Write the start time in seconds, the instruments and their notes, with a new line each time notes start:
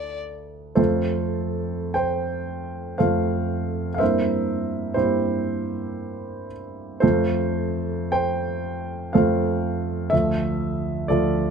Already playing: grand piano D2 D4 F4 A4, violin D5
0.75 grand piano F2 A3 C4 F4 A4 C5
1.94 grand piano C5 G5
2.98 grand piano F2 A3 C4 F4 A4 C5 F5
3.94 grand piano E5 F5
4.00 grand piano G2 A#3 C4 E4 A#4 C5
4.94 grand piano G2 A#3 C4 E4 G4 C5
7.00 grand piano F2 F3 A3 F4 A4 C5
8.12 grand piano C5 G5
9.13 grand piano F2 F3 A3 F4 A4 C5 F5
10.10 grand piano D2 F3 A3 F4 E5
11.08 grand piano D2 F3 A3 F4 A4 D5